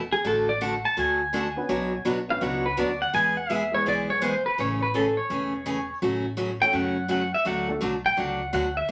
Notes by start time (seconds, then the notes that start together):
Already playing: E1
0.12 G#4
0.24 A1 D3 A3 D4 F#4 A4
0.49 D5
0.61 D3 A3 D4 F#4 A4 F#5
0.85 A5
0.97 D2 D3 A3 D4 F#4 A4 G#5
1.33 D3 A3 D4 F#4 A4
1.56 B3 C#4 D4 F#4 B4
1.69 B1 B2 F#3 B3 D4 F#4 C#5
2.05 B1 B2 F#3 B3 D4 F#4 C#5
2.28 B3 C#4 D4 F#4 B4 F5
2.41 C#2 B2 F#3 B3 D4 F#4 C#5 F#5
2.66 B4
2.77 D2 B2 F#3 B3 D4 F#4 C#5 D5
3.02 F#5
3.13 E2 E3 G#3 B3 E4 G#4 G#5
3.37 F#5
3.50 E3 G#3 B3 E4 G#4 E5
3.72 G#3 B3 E4 G#4 B4 C#5
3.86 B1 E3 G#3 B3 E4 G#4 D5
4.10 C#5
4.21 E3 G#3 B3 E4 G#4 C5
4.46 B4
4.58 A1 C#3 E3 A3 C#4 G#4 C#5
4.83 B4
4.94 C#3 E3 A3 C#4 G#4 A4
5.17 C#5
5.30 E1 C#3 E3 A3 C#4 G#4
5.66 C#3 E3 A3 C#4 G#4
6.02 A1 C#3 F#3 A3 C#4 F#4
6.37 C#3 F#3 A3 C#4 F#4
6.61 A3 C#4 F#4 A4 C#5 G5
6.73 F#2 C#3 F#3 A3 C#4 F#4 F#5
7.08 C#3 F#3 A3 C#4 F#4 F#5
7.34 E5
7.45 D2 D3 F#3 A3 D4 F#4 F#5
7.68 A3 D4 F#4 A4 D5
7.81 B1 D3 F#3 A3 D4 F#4
8.06 G5
8.17 C#2 D3 F#3 A3 D4 F#4 F#5
8.53 D2 D3 F#3 A3 D4 F#4 F#5
8.77 E5